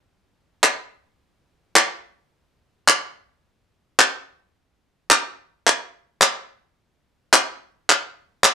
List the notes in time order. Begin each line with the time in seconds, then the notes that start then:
0.64 clap
1.76 clap
2.88 clap
3.99 clap
5.11 clap
5.67 clap
6.22 clap
7.33 clap
7.90 clap
8.44 clap